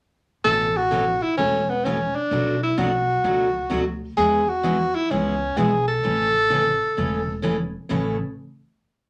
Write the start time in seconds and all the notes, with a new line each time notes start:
0.44 A1 B2 E3 A3 C#4 A4
0.77 F#4
0.91 B2 E3 A3 C#4 A4
1.23 E4
1.37 E1 B2 E3 A3 C#4 A4
1.69 B3
1.84 B2 E3 A3 C#4 A4
2.15 D4
2.31 B1 B2 F#3 A3 D4 F#4
2.63 E4
2.78 B1 B2 F#3 A3 D4 F#4
3.24 C#2 B2 F#3 A3 D4 F#4
3.70 D2 B2 F#3 A3 D4 F#4
4.17 E2 E3 G#3 B3 E4 G#4
4.49 F#4
4.63 E3 G#3 B3 E4 G#4
4.95 E4
5.11 C#2 E3 G#3 B3 C#4 E4 G#4
5.57 B1 E3 G#3 B3 E4 G#4
5.88 A4
6.03 A1 C#3 E3 A3 C#4 A4
6.50 C#3 E3 A3 C#4 A4
6.97 E1 C#3 E3 A3 C#4 A4
7.42 C#3 E3 A3 C#4 A4
7.89 A1 A2 C#3 E3 A3 C#4 A4